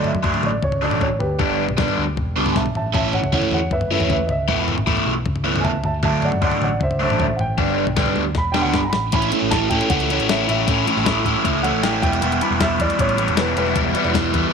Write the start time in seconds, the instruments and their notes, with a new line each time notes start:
Already playing: picked electric bass D2, overdriven electric guitar D3 F#3 A3 D4
0.02 upright piano D#5, floor tom
0.07 upright piano E5
0.15 picked electric bass F#2, floor tom
0.23 overdriven electric guitar D3 F#3 A3 D4, kick
0.34 floor tom
0.43 picked electric bass A1, upright piano D5, mid tom
0.63 picked electric bass C#2, upright piano C#5, kick, floor tom
0.72 floor tom
0.81 overdriven electric guitar D3 F#3 A3 D4, upright piano D5
0.91 picked electric bass A1, floor tom
1.01 upright piano C#5, kick, mid tom
1.19 picked electric bass D2, upright piano G4 B4, floor tom
1.39 picked electric bass G1, overdriven electric guitar D3 G3 B3 D4, kick, floor tom
1.69 picked electric bass B1, floor tom
1.77 overdriven electric guitar D3 G3 B3 D4, kick, snare
1.88 floor tom
1.98 picked electric bass D2
2.17 picked electric bass E1, kick, floor tom
2.36 picked electric bass C#2, overdriven electric guitar D3 G3 B3 D4
2.46 floor tom
2.51 upright piano G#5
2.56 picked electric bass B1, upright piano E5 A5, kick, snare, mid tom
2.66 floor tom
2.74 picked electric bass A1, upright piano E5 A5, floor tom
2.94 picked electric bass A1, overdriven electric guitar E3 A3 C#4 E4, upright piano E5 A5, kick, floor tom
3.13 upright piano C#5 F#5, floor tom
3.22 picked electric bass C#2, floor tom
3.33 overdriven electric guitar E3 A3 C#4 E4, upright piano C#5 F#5, kick
3.42 floor tom
3.51 picked electric bass E2, upright piano C#5 F#5, mid tom
3.71 picked electric bass F#1, upright piano B4 E5, kick, floor tom
3.81 floor tom
3.91 overdriven electric guitar E3 A3 C#4 E4, upright piano B4 E5
4.00 picked electric bass E2, floor tom
4.10 upright piano B4 E5, kick, mid tom
4.27 picked electric bass C#2, upright piano D#5, floor tom
4.31 upright piano E5
4.48 picked electric bass E1, overdriven electric guitar E3 A3 B3 E4, kick, floor tom
4.68 floor tom
4.78 picked electric bass A1, floor tom
4.86 overdriven electric guitar E3 A3 B3 E4, kick
4.97 floor tom
5.06 picked electric bass B1
5.26 picked electric bass C#2, kick, floor tom
5.36 floor tom
5.44 overdriven electric guitar E3 A3 B3 E4
5.54 picked electric bass C#2, floor tom
5.60 upright piano E5 G#5
5.65 upright piano A5, kick, mid tom
5.84 picked electric bass D2, upright piano E5 A5, floor tom
6.03 picked electric bass D2, overdriven electric guitar D3 F#3 A3 D4, upright piano E5 A5, kick, floor tom
6.22 upright piano D5 F#5, floor tom
6.32 picked electric bass F#2, floor tom
6.42 overdriven electric guitar D3 F#3 A3 D4, upright piano D5 F#5, kick
6.52 floor tom
6.61 picked electric bass A1, upright piano D5 F#5, mid tom
6.81 picked electric bass C#2, upright piano C5 E5, kick, floor tom
6.91 floor tom
7.00 overdriven electric guitar D3 F#3 A3 D4, upright piano C5 E5
7.10 picked electric bass A1, floor tom
7.20 upright piano C5 E5, kick, mid tom
7.36 picked electric bass A1, upright piano F#5, floor tom
7.41 upright piano G5
7.58 picked electric bass G1, overdriven electric guitar D3 G3 B3 D4, kick, floor tom
7.87 picked electric bass B1, floor tom
7.96 overdriven electric guitar D3 G3 B3 D4, kick, snare
8.06 floor tom
8.16 picked electric bass D2, mid tom
8.35 picked electric bass E1, upright piano B5, kick, snare
8.52 overdriven electric guitar D3 G3 B3 D4, upright piano G5, snare
8.62 picked electric bass D2, upright piano F#5
8.74 picked electric bass G1, upright piano B5, kick, snare
8.85 upright piano A#5
8.90 upright piano B5, snare
8.94 picked electric bass A1
9.12 picked electric bass A1, overdriven electric guitar A2 E3 A3 C#4 E4, upright piano B5, kick, closed hi-hat
9.22 closed hi-hat
9.31 overdriven electric guitar A2 E3 A3 C#4 E4, closed hi-hat
9.42 picked electric bass A1
9.51 overdriven electric guitar A2 E3 A3 C#4 E4, upright piano A5, kick, snare, closed hi-hat
9.70 overdriven electric guitar A2 E3 A3 C#4 E4, picked electric bass A2, upright piano G5, kick, closed hi-hat
9.81 closed hi-hat
9.90 picked electric bass C#2, overdriven electric guitar A2 E3 A3 C#4 E4, upright piano F#5, kick, closed hi-hat
10.00 closed hi-hat
10.09 overdriven electric guitar A2 E3 A3 C#4 E4, closed hi-hat
10.20 picked electric bass A1, closed hi-hat
10.29 overdriven electric guitar A2 E3 A3 C#4 E4, upright piano E5, snare, closed hi-hat
10.47 picked electric bass A1, overdriven electric guitar A2 E3 A3 C#4 E4, upright piano E5, closed hi-hat
10.66 picked electric bass A1, overdriven electric guitar A2 E3 A3 C#4 E4, kick, closed hi-hat
10.86 overdriven electric guitar A2 E3 A3 C#4 E4, closed hi-hat
10.97 picked electric bass A1, snare
11.05 overdriven electric guitar A2 E3 A3 C#4 E4, kick, snare, closed hi-hat
11.24 overdriven electric guitar A2 E3 A3 C#4 E4, picked electric bass A2, kick, closed hi-hat
11.43 picked electric bass C#2, overdriven electric guitar A2 E3 A3 C#4 E4, kick, closed hi-hat
11.63 overdriven electric guitar A2 E3 A3 C#4 E4, upright piano F#5, closed hi-hat
11.73 picked electric bass A1
11.83 overdriven electric guitar A2 E3 A3 C#4 E4, upright piano G5, snare, closed hi-hat
12.02 picked electric bass E1, overdriven electric guitar E3 G3 B3 E4, upright piano G5, kick, closed hi-hat
12.13 snare, closed hi-hat
12.21 picked electric bass E1, overdriven electric guitar E3 G3 B3 E4, closed hi-hat
12.32 closed hi-hat
12.41 overdriven electric guitar E3 G3 B3 E4, closed hi-hat
12.51 picked electric bass E1
12.60 overdriven electric guitar E3 G3 B3 E4, upright piano E5, kick, snare, closed hi-hat
12.80 picked electric bass E2, overdriven electric guitar E3 G3 B3 E4, upright piano D5, kick, closed hi-hat
12.90 closed hi-hat
12.98 picked electric bass A1, overdriven electric guitar E3 G3 B3 E4, upright piano C#5, kick, closed hi-hat
13.09 closed hi-hat
13.17 overdriven electric guitar E3 G3 B3 E4, closed hi-hat
13.28 picked electric bass E1, closed hi-hat
13.37 overdriven electric guitar E3 G3 B3 E4, upright piano B4, snare, closed hi-hat
13.56 picked electric bass E1, overdriven electric guitar E3 G3 B3 E4, upright piano B4, closed hi-hat
13.66 snare
13.76 picked electric bass E1, overdriven electric guitar E3 G3 B3 E4, kick, closed hi-hat
13.95 overdriven electric guitar E3 G3 B3 E4, closed hi-hat
14.04 picked electric bass E1, snare
14.13 overdriven electric guitar E3 G3 B3 E4, kick, snare, closed hi-hat
14.33 picked electric bass E2, overdriven electric guitar E3 G3 B3 E4, kick, closed hi-hat